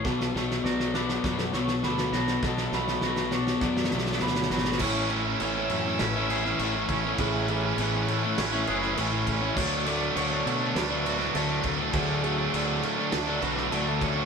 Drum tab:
CC |--------------------------------|--------------------------------|x---x---x---x---x---x---x---x---|x---x---x---x---x---x---x---x---|
SD |o-o-o-o-o-o-o-o-o-o-o-o-o-o-o-o-|o-o-o-o-o-o-o-o-o-oooooooooooooo|----------------o-----o---------|----------------o-----o---------|
BD |o---------------o---------------|o---------------o---------------|o---------------------------o---|o---------------------------o---|

CC |x---x---x---x---x---x---x---x---|x---x---x---x---x---x---x---x---|
SD |----------------o-----o---------|----------------o-----o---------|
BD |o---------------------------o---|o---------------------------o---|